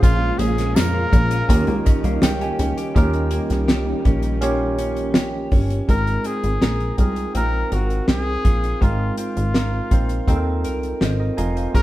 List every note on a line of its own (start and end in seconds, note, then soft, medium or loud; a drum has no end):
0.00 0.32 A#1 loud
0.00 1.56 A#2 medium
0.00 2.92 C#3 medium
0.00 2.92 A#3 medium
0.00 0.83 C#4 medium
0.00 0.83 F4 medium
0.00 0.93 F4 medium
0.00 1.47 F4 medium
0.00 0.40 F4 loud
0.00 0.83 G#4 medium
0.00 0.84 C5 medium
0.00 kick medium
0.00 closed hi-hat medium
0.00 tambourine medium
0.21 0.57 G#3 medium
0.39 0.78 A#1 loud
0.39 0.76 C#4 medium
0.39 0.77 G#4 medium
0.39 closed hi-hat medium
0.39 tambourine soft
0.58 1.57 G#3 medium
0.58 snare soft
0.58 closed hi-hat medium
0.76 1.05 F2 loud
0.76 1.12 C#4 medium
0.76 2.22 A#4 loud
0.76 snare loud
0.76 closed hi-hat medium
0.76 tambourine medium
0.94 1.30 F4 medium
1.13 1.42 A#1 medium
1.13 1.85 C#4 medium
1.13 kick loud
1.13 closed hi-hat medium
1.13 tambourine soft
1.31 1.57 F4 medium
1.31 closed hi-hat medium
1.48 1.64 D#2 loud
1.48 2.95 D#3 medium
1.48 2.94 G3 medium
1.48 2.40 C#4 medium
1.48 2.94 D#4 medium
1.48 2.40 F4 medium
1.48 2.41 G4 medium
1.48 2.41 A#4 medium
1.48 kick medium
1.48 closed hi-hat medium
1.67 1.82 C#2 loud
1.67 2.03 A#3 medium
1.67 closed hi-hat soft
1.86 2.22 C#4 medium
1.86 2.03 D#5 medium
1.86 kick medium
1.86 closed hi-hat medium
1.86 tambourine soft
2.04 2.19 C2 medium
2.04 3.31 A#3 medium
2.04 2.22 F5 medium
2.04 closed hi-hat soft
2.22 2.52 C#2 loud
2.22 2.59 C#4 medium
2.22 2.40 G5 medium
2.22 snare loud
2.22 closed hi-hat medium
2.22 tambourine medium
2.41 2.77 G4 medium
2.41 2.92 G#5 medium
2.41 closed hi-hat soft
2.59 2.74 C#2 medium
2.59 3.71 C#4 medium
2.59 closed hi-hat medium
2.59 tambourine soft
2.77 2.95 G4 medium
2.77 closed hi-hat medium
2.95 3.40 D#2 loud
2.95 5.88 D#3 medium
2.95 5.86 G3 medium
2.95 5.86 A#3 medium
2.95 3.86 C#4 medium
2.95 5.86 C#4 medium
2.95 5.86 D#4 medium
2.95 3.87 F4 medium
2.95 3.67 G4 medium
2.95 3.87 G4 medium
2.95 3.88 A#4 loud
2.95 kick medium
2.95 closed hi-hat medium
3.14 closed hi-hat soft
3.31 4.41 A#3 medium
3.31 closed hi-hat medium
3.50 3.94 C2 medium
3.50 snare soft
3.50 closed hi-hat medium
3.68 5.14 G4 medium
3.68 snare loud
3.68 closed hi-hat medium
4.05 5.48 A#1 medium
4.05 4.78 C#4 medium
4.05 kick medium
4.05 closed hi-hat medium
4.23 closed hi-hat soft
4.41 6.24 A#3 medium
4.41 5.33 C#4 medium
4.41 5.33 F4 medium
4.41 5.34 G4 medium
4.41 5.34 C#5 loud
4.41 closed hi-hat medium
4.79 5.51 C#4 medium
4.79 closed hi-hat medium
4.97 closed hi-hat soft
5.14 5.96 G4 medium
5.14 snare loud
5.14 closed hi-hat medium
5.52 5.81 G1 medium
5.52 5.96 C#4 medium
5.52 kick medium
5.52 open hi-hat soft
5.70 closed hi-hat medium
5.87 6.18 G#1 loud
5.87 8.80 G#3 medium
5.87 6.56 C4 medium
5.87 6.57 D#4 medium
5.87 6.57 F4 medium
5.87 6.28 A#4 loud
5.87 6.58 A#4 medium
5.87 kick medium
5.87 closed hi-hat medium
6.07 closed hi-hat soft
6.24 7.34 C4 soft
6.24 6.99 G#4 medium
6.24 closed hi-hat medium
6.44 6.58 G#1 medium
6.44 closed hi-hat soft
6.62 6.92 A#1 medium
6.62 7.71 A#4 medium
6.62 snare medium
6.62 closed hi-hat medium
6.80 closed hi-hat soft
6.97 7.28 C2 loud
6.97 7.21 C4 medium
6.97 7.21 D#4 medium
6.97 7.22 F4 medium
6.97 7.33 G#4 medium
6.97 7.22 A#4 medium
6.97 kick medium
6.97 closed hi-hat medium
7.16 closed hi-hat soft
7.34 7.64 A#1 loud
7.34 8.26 C4 medium
7.34 8.07 C4 medium
7.34 8.27 D#4 medium
7.34 7.75 A#4 medium
7.34 8.27 A#4 medium
7.34 8.27 F5 medium
7.34 closed hi-hat medium
7.72 8.01 G#1 medium
7.72 8.09 F#4 medium
7.72 9.54 A#4 medium
7.72 closed hi-hat medium
7.90 closed hi-hat soft
8.08 8.38 C2 medium
8.08 9.17 C4 medium
8.08 8.84 G#4 medium
8.08 snare loud
8.08 closed hi-hat medium
8.45 8.74 A#1 medium
8.45 9.91 F4 soft
8.45 kick medium
8.45 closed hi-hat medium
8.64 closed hi-hat soft
8.81 9.11 G#1 loud
8.81 11.74 G#3 medium
8.81 9.50 C4 medium
8.81 9.50 D#4 medium
8.81 9.18 F4 medium
8.81 9.51 F4 medium
8.81 9.51 A#4 medium
8.81 kick medium
8.81 closed hi-hat medium
9.18 10.27 C4 medium
9.18 10.61 F4 medium
9.18 closed hi-hat medium
9.37 9.81 G#1 medium
9.37 closed hi-hat soft
9.54 10.65 A#4 medium
9.54 snare loud
9.54 closed hi-hat medium
9.91 10.21 A#1 medium
9.91 10.14 C4 medium
9.91 10.15 D#4 medium
9.91 11.38 F4 medium
9.91 10.15 F4 medium
9.91 10.16 C5 medium
9.91 kick medium
9.91 closed hi-hat medium
10.09 closed hi-hat soft
10.27 10.66 D#2 medium
10.27 11.19 C4 medium
10.27 11.00 C4 medium
10.27 11.20 D#4 medium
10.27 11.01 F4 medium
10.27 10.36 A4 medium
10.27 kick medium
10.27 closed hi-hat medium
10.36 11.06 A#4 medium
10.65 10.94 C2 medium
10.65 11.83 A#4 medium
10.65 closed hi-hat medium
10.83 closed hi-hat soft
11.01 11.31 G#1 medium
11.01 11.82 C4 medium
11.01 11.19 F4 soft
11.01 11.19 C5 medium
11.01 11.19 D#5 medium
11.01 snare medium
11.01 closed hi-hat medium
11.20 11.38 A#4 soft
11.20 11.37 D#5 medium
11.37 11.68 F1 medium
11.37 11.83 F4 medium
11.37 11.56 D#5 medium
11.37 11.55 G#5 medium
11.37 11.72 A#5 medium
11.37 closed hi-hat medium
11.56 11.83 C5 soft
11.56 11.83 F5 medium
11.56 closed hi-hat soft
11.72 11.83 F#1 medium
11.72 11.83 F#3 medium
11.72 11.83 A#3 medium
11.72 11.83 C#4 medium
11.72 11.83 F4 medium
11.72 11.83 G#4 medium
11.72 11.83 A#4 loud
11.72 kick medium
11.72 closed hi-hat medium